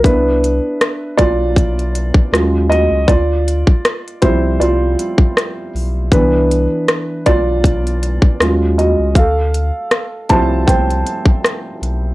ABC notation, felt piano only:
X:1
M:4/4
L:1/8
Q:"Swing 16ths" 1/4=79
K:Ddor
V:1 name="Felt piano"
B3 [Fd]3 z [_G_e] | [Fd]3 c [Fd]3 z | B3 [Fd]3 z [_G_e] | [Af]3 [ca] [cg]3 z |]
V:2 name="Felt piano"
[B,DE]6 [_G,_A,_DF] z | z3 [F,G,CE]3 z2 | [E,B,D] z4 z [_G,_A,_DF]2 | z3 [F,G,CE]3 z2 |]